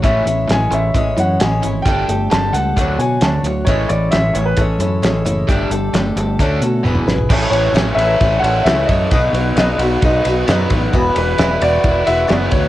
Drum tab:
CC |----------------|----------------|----------------|----------------|
RD |----------------|----------------|----------------|----------------|
HH |x-x-x-x-x-x-x-x-|x-x-x-x-x-x-x-x-|x-x-x-x-x-x-x-x-|x-x-x-x-x-x-----|
SD |----o-------o---|----o-------o---|----o-------o---|----o---------o-|
T1 |----------------|----------------|----------------|------------o---|
T2 |----------------|----------------|----------------|-------------o--|
FT |----------------|----------------|----------------|---------------o|
BD |o-------o-------|o-------o-------|o-------o-------|o-------o-------|

CC |x---------------|----------------|----------------|
RD |--x-x-x-x-x-x-x-|x-x-x-x-x-x-x-x-|x-x-x-x-x-x-x-x-|
HH |----------------|----------------|----------------|
SD |----o-------o---|----o-------o---|----o-------o---|
T1 |----------------|----------------|----------------|
T2 |----------------|----------------|----------------|
FT |----------------|----------------|----------------|
BD |o-------o-----o-|o-------o-----o-|o-------o-----o-|